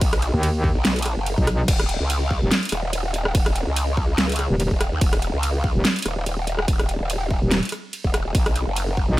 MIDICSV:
0, 0, Header, 1, 4, 480
1, 0, Start_track
1, 0, Tempo, 416667
1, 16, Time_signature, 4, 2, 24, 8
1, 10593, End_track
2, 0, Start_track
2, 0, Title_t, "Wobble bass"
2, 0, Program_c, 0, 39
2, 16, Note_on_c, 0, 35, 99
2, 367, Note_off_c, 0, 35, 0
2, 867, Note_on_c, 0, 35, 94
2, 1326, Note_off_c, 0, 35, 0
2, 1347, Note_on_c, 0, 30, 98
2, 1566, Note_off_c, 0, 30, 0
2, 1937, Note_on_c, 0, 27, 96
2, 2287, Note_off_c, 0, 27, 0
2, 2307, Note_on_c, 0, 37, 97
2, 2767, Note_off_c, 0, 37, 0
2, 3136, Note_on_c, 0, 27, 101
2, 3839, Note_off_c, 0, 27, 0
2, 3856, Note_on_c, 0, 27, 101
2, 4206, Note_off_c, 0, 27, 0
2, 4227, Note_on_c, 0, 37, 96
2, 5166, Note_off_c, 0, 37, 0
2, 5427, Note_on_c, 0, 27, 99
2, 5646, Note_off_c, 0, 27, 0
2, 5667, Note_on_c, 0, 39, 98
2, 5759, Note_off_c, 0, 39, 0
2, 5776, Note_on_c, 0, 27, 99
2, 6126, Note_off_c, 0, 27, 0
2, 6147, Note_on_c, 0, 37, 99
2, 6606, Note_off_c, 0, 37, 0
2, 6976, Note_on_c, 0, 27, 102
2, 7679, Note_off_c, 0, 27, 0
2, 7696, Note_on_c, 0, 27, 98
2, 8046, Note_off_c, 0, 27, 0
2, 8067, Note_on_c, 0, 27, 97
2, 8526, Note_off_c, 0, 27, 0
2, 9267, Note_on_c, 0, 27, 97
2, 9599, Note_off_c, 0, 27, 0
2, 9616, Note_on_c, 0, 35, 99
2, 9966, Note_off_c, 0, 35, 0
2, 9987, Note_on_c, 0, 30, 97
2, 10446, Note_off_c, 0, 30, 0
2, 10593, End_track
3, 0, Start_track
3, 0, Title_t, "Wobble bass"
3, 0, Program_c, 1, 39
3, 387, Note_on_c, 1, 39, 96
3, 846, Note_off_c, 1, 39, 0
3, 1587, Note_on_c, 1, 35, 97
3, 1919, Note_off_c, 1, 35, 0
3, 2787, Note_on_c, 1, 27, 100
3, 2879, Note_off_c, 1, 27, 0
3, 5187, Note_on_c, 1, 27, 99
3, 5406, Note_off_c, 1, 27, 0
3, 6627, Note_on_c, 1, 27, 99
3, 6719, Note_off_c, 1, 27, 0
3, 8547, Note_on_c, 1, 27, 103
3, 8766, Note_off_c, 1, 27, 0
3, 10467, Note_on_c, 1, 35, 103
3, 10559, Note_off_c, 1, 35, 0
3, 10593, End_track
4, 0, Start_track
4, 0, Title_t, "Drums"
4, 16, Note_on_c, 9, 36, 117
4, 17, Note_on_c, 9, 42, 83
4, 17, Note_on_c, 9, 51, 70
4, 132, Note_off_c, 9, 36, 0
4, 132, Note_off_c, 9, 42, 0
4, 132, Note_off_c, 9, 51, 0
4, 148, Note_on_c, 9, 37, 86
4, 148, Note_on_c, 9, 42, 38
4, 256, Note_off_c, 9, 42, 0
4, 256, Note_on_c, 9, 42, 56
4, 263, Note_off_c, 9, 37, 0
4, 372, Note_off_c, 9, 42, 0
4, 497, Note_on_c, 9, 42, 85
4, 497, Note_on_c, 9, 51, 49
4, 612, Note_off_c, 9, 42, 0
4, 612, Note_off_c, 9, 51, 0
4, 736, Note_on_c, 9, 36, 63
4, 852, Note_off_c, 9, 36, 0
4, 976, Note_on_c, 9, 38, 119
4, 976, Note_on_c, 9, 42, 80
4, 976, Note_on_c, 9, 51, 70
4, 1092, Note_off_c, 9, 38, 0
4, 1092, Note_off_c, 9, 42, 0
4, 1092, Note_off_c, 9, 51, 0
4, 1108, Note_on_c, 9, 42, 51
4, 1137, Note_off_c, 9, 42, 0
4, 1137, Note_on_c, 9, 42, 67
4, 1180, Note_off_c, 9, 42, 0
4, 1180, Note_on_c, 9, 42, 82
4, 1216, Note_off_c, 9, 42, 0
4, 1216, Note_on_c, 9, 37, 54
4, 1216, Note_on_c, 9, 42, 56
4, 1332, Note_off_c, 9, 37, 0
4, 1332, Note_off_c, 9, 42, 0
4, 1457, Note_on_c, 9, 42, 83
4, 1457, Note_on_c, 9, 51, 49
4, 1572, Note_off_c, 9, 42, 0
4, 1572, Note_off_c, 9, 51, 0
4, 1587, Note_on_c, 9, 36, 59
4, 1697, Note_on_c, 9, 37, 83
4, 1697, Note_on_c, 9, 42, 54
4, 1703, Note_off_c, 9, 36, 0
4, 1812, Note_off_c, 9, 37, 0
4, 1812, Note_off_c, 9, 42, 0
4, 1937, Note_on_c, 9, 36, 121
4, 1937, Note_on_c, 9, 42, 84
4, 1937, Note_on_c, 9, 49, 78
4, 1937, Note_on_c, 9, 51, 69
4, 2052, Note_off_c, 9, 36, 0
4, 2052, Note_off_c, 9, 42, 0
4, 2052, Note_off_c, 9, 49, 0
4, 2052, Note_off_c, 9, 51, 0
4, 2068, Note_on_c, 9, 37, 83
4, 2068, Note_on_c, 9, 42, 40
4, 2177, Note_off_c, 9, 42, 0
4, 2177, Note_on_c, 9, 42, 56
4, 2183, Note_off_c, 9, 37, 0
4, 2292, Note_off_c, 9, 42, 0
4, 2417, Note_on_c, 9, 42, 84
4, 2417, Note_on_c, 9, 51, 50
4, 2532, Note_off_c, 9, 42, 0
4, 2532, Note_off_c, 9, 51, 0
4, 2656, Note_on_c, 9, 36, 64
4, 2772, Note_off_c, 9, 36, 0
4, 2897, Note_on_c, 9, 38, 121
4, 2897, Note_on_c, 9, 42, 84
4, 2897, Note_on_c, 9, 51, 68
4, 3012, Note_off_c, 9, 38, 0
4, 3012, Note_off_c, 9, 42, 0
4, 3012, Note_off_c, 9, 51, 0
4, 3028, Note_on_c, 9, 42, 54
4, 3057, Note_off_c, 9, 42, 0
4, 3057, Note_on_c, 9, 42, 69
4, 3100, Note_off_c, 9, 42, 0
4, 3100, Note_on_c, 9, 42, 86
4, 3137, Note_off_c, 9, 42, 0
4, 3137, Note_on_c, 9, 37, 53
4, 3137, Note_on_c, 9, 42, 57
4, 3252, Note_off_c, 9, 37, 0
4, 3252, Note_off_c, 9, 42, 0
4, 3377, Note_on_c, 9, 42, 81
4, 3377, Note_on_c, 9, 51, 48
4, 3492, Note_off_c, 9, 42, 0
4, 3492, Note_off_c, 9, 51, 0
4, 3616, Note_on_c, 9, 42, 58
4, 3732, Note_off_c, 9, 42, 0
4, 3747, Note_on_c, 9, 37, 83
4, 3856, Note_on_c, 9, 36, 127
4, 3856, Note_on_c, 9, 42, 84
4, 3856, Note_on_c, 9, 51, 66
4, 3863, Note_off_c, 9, 37, 0
4, 3972, Note_off_c, 9, 36, 0
4, 3972, Note_off_c, 9, 42, 0
4, 3972, Note_off_c, 9, 51, 0
4, 3987, Note_on_c, 9, 37, 79
4, 3987, Note_on_c, 9, 42, 39
4, 4096, Note_off_c, 9, 42, 0
4, 4096, Note_on_c, 9, 42, 56
4, 4102, Note_off_c, 9, 37, 0
4, 4211, Note_off_c, 9, 42, 0
4, 4336, Note_on_c, 9, 42, 86
4, 4336, Note_on_c, 9, 51, 48
4, 4452, Note_off_c, 9, 42, 0
4, 4452, Note_off_c, 9, 51, 0
4, 4576, Note_on_c, 9, 36, 67
4, 4692, Note_off_c, 9, 36, 0
4, 4816, Note_on_c, 9, 38, 125
4, 4816, Note_on_c, 9, 42, 86
4, 4816, Note_on_c, 9, 51, 68
4, 4931, Note_off_c, 9, 38, 0
4, 4931, Note_off_c, 9, 42, 0
4, 4931, Note_off_c, 9, 51, 0
4, 4947, Note_on_c, 9, 42, 54
4, 4976, Note_off_c, 9, 42, 0
4, 4976, Note_on_c, 9, 42, 69
4, 5020, Note_off_c, 9, 42, 0
4, 5020, Note_on_c, 9, 42, 86
4, 5056, Note_off_c, 9, 42, 0
4, 5056, Note_on_c, 9, 37, 52
4, 5056, Note_on_c, 9, 42, 57
4, 5171, Note_off_c, 9, 37, 0
4, 5171, Note_off_c, 9, 42, 0
4, 5296, Note_on_c, 9, 42, 83
4, 5296, Note_on_c, 9, 51, 46
4, 5411, Note_off_c, 9, 42, 0
4, 5411, Note_off_c, 9, 51, 0
4, 5427, Note_on_c, 9, 36, 62
4, 5536, Note_on_c, 9, 37, 79
4, 5536, Note_on_c, 9, 42, 56
4, 5543, Note_off_c, 9, 36, 0
4, 5651, Note_off_c, 9, 37, 0
4, 5651, Note_off_c, 9, 42, 0
4, 5776, Note_on_c, 9, 36, 127
4, 5776, Note_on_c, 9, 42, 83
4, 5776, Note_on_c, 9, 51, 64
4, 5891, Note_off_c, 9, 42, 0
4, 5891, Note_off_c, 9, 51, 0
4, 5892, Note_off_c, 9, 36, 0
4, 5907, Note_on_c, 9, 37, 77
4, 5907, Note_on_c, 9, 42, 39
4, 6016, Note_off_c, 9, 42, 0
4, 6016, Note_on_c, 9, 42, 56
4, 6022, Note_off_c, 9, 37, 0
4, 6131, Note_off_c, 9, 42, 0
4, 6256, Note_on_c, 9, 42, 86
4, 6256, Note_on_c, 9, 51, 48
4, 6371, Note_off_c, 9, 42, 0
4, 6371, Note_off_c, 9, 51, 0
4, 6496, Note_on_c, 9, 36, 68
4, 6612, Note_off_c, 9, 36, 0
4, 6736, Note_on_c, 9, 38, 127
4, 6736, Note_on_c, 9, 42, 81
4, 6736, Note_on_c, 9, 51, 65
4, 6851, Note_off_c, 9, 38, 0
4, 6851, Note_off_c, 9, 42, 0
4, 6851, Note_off_c, 9, 51, 0
4, 6867, Note_on_c, 9, 42, 54
4, 6896, Note_off_c, 9, 42, 0
4, 6896, Note_on_c, 9, 42, 69
4, 6940, Note_off_c, 9, 42, 0
4, 6940, Note_on_c, 9, 42, 86
4, 6976, Note_off_c, 9, 42, 0
4, 6976, Note_on_c, 9, 37, 52
4, 6976, Note_on_c, 9, 42, 55
4, 7091, Note_off_c, 9, 37, 0
4, 7091, Note_off_c, 9, 42, 0
4, 7216, Note_on_c, 9, 42, 82
4, 7216, Note_on_c, 9, 51, 45
4, 7331, Note_off_c, 9, 42, 0
4, 7331, Note_off_c, 9, 51, 0
4, 7456, Note_on_c, 9, 42, 57
4, 7571, Note_off_c, 9, 42, 0
4, 7587, Note_on_c, 9, 37, 80
4, 7696, Note_on_c, 9, 36, 127
4, 7696, Note_on_c, 9, 42, 81
4, 7696, Note_on_c, 9, 51, 63
4, 7702, Note_off_c, 9, 37, 0
4, 7811, Note_off_c, 9, 42, 0
4, 7811, Note_off_c, 9, 51, 0
4, 7812, Note_off_c, 9, 36, 0
4, 7827, Note_on_c, 9, 37, 80
4, 7827, Note_on_c, 9, 42, 37
4, 7936, Note_off_c, 9, 42, 0
4, 7936, Note_on_c, 9, 42, 53
4, 7943, Note_off_c, 9, 37, 0
4, 8051, Note_off_c, 9, 42, 0
4, 8176, Note_on_c, 9, 42, 82
4, 8176, Note_on_c, 9, 51, 46
4, 8291, Note_off_c, 9, 42, 0
4, 8291, Note_off_c, 9, 51, 0
4, 8416, Note_on_c, 9, 36, 66
4, 8532, Note_off_c, 9, 36, 0
4, 8656, Note_on_c, 9, 38, 127
4, 8656, Note_on_c, 9, 42, 81
4, 8656, Note_on_c, 9, 51, 62
4, 8771, Note_off_c, 9, 38, 0
4, 8771, Note_off_c, 9, 42, 0
4, 8771, Note_off_c, 9, 51, 0
4, 8787, Note_on_c, 9, 42, 50
4, 8816, Note_off_c, 9, 42, 0
4, 8816, Note_on_c, 9, 42, 67
4, 8860, Note_off_c, 9, 42, 0
4, 8860, Note_on_c, 9, 42, 82
4, 8896, Note_off_c, 9, 42, 0
4, 8896, Note_on_c, 9, 37, 52
4, 8896, Note_on_c, 9, 42, 54
4, 9011, Note_off_c, 9, 37, 0
4, 9011, Note_off_c, 9, 42, 0
4, 9136, Note_on_c, 9, 42, 78
4, 9136, Note_on_c, 9, 51, 43
4, 9251, Note_off_c, 9, 42, 0
4, 9251, Note_off_c, 9, 51, 0
4, 9267, Note_on_c, 9, 36, 63
4, 9376, Note_on_c, 9, 37, 81
4, 9376, Note_on_c, 9, 42, 54
4, 9383, Note_off_c, 9, 36, 0
4, 9491, Note_off_c, 9, 37, 0
4, 9491, Note_off_c, 9, 42, 0
4, 9616, Note_on_c, 9, 36, 121
4, 9616, Note_on_c, 9, 42, 77
4, 9616, Note_on_c, 9, 51, 63
4, 9731, Note_off_c, 9, 36, 0
4, 9732, Note_off_c, 9, 42, 0
4, 9732, Note_off_c, 9, 51, 0
4, 9747, Note_on_c, 9, 37, 82
4, 9747, Note_on_c, 9, 42, 36
4, 9857, Note_off_c, 9, 42, 0
4, 9857, Note_on_c, 9, 42, 52
4, 9862, Note_off_c, 9, 37, 0
4, 9972, Note_off_c, 9, 42, 0
4, 10096, Note_on_c, 9, 42, 77
4, 10096, Note_on_c, 9, 51, 46
4, 10212, Note_off_c, 9, 42, 0
4, 10212, Note_off_c, 9, 51, 0
4, 10336, Note_on_c, 9, 36, 64
4, 10452, Note_off_c, 9, 36, 0
4, 10593, End_track
0, 0, End_of_file